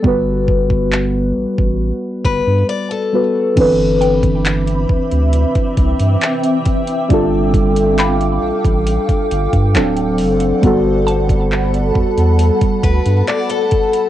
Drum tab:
CC |----------------|x---------------|----------------|----------------|
HH |----------------|x-xxxx-xxxxxxxxx|x-xxxx-xxxxxxxox|x-xxxx-xxxxxxxxx|
CP |----x-----------|----x-------x---|----x-------x---|----x-------x---|
BD |o-oo---o--o-----|o--o--o--oo---o-|o-o----o-o-o----|o--o--o--oo---o-|